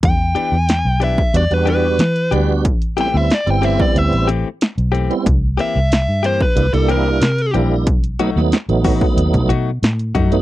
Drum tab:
HH |x-x-x-x-xxx-xxx-|xxx-xxx-xxx-xxxx|x-x-x-x-xxx-xxx-|xxx-xxo-xxx-xxxx|
SD |----o-------o---|----o-------o---|----o----o--o---|---oo-------o---|
BD |o------o--------|o------o--------|o------o--------|o-----oo-o----o-|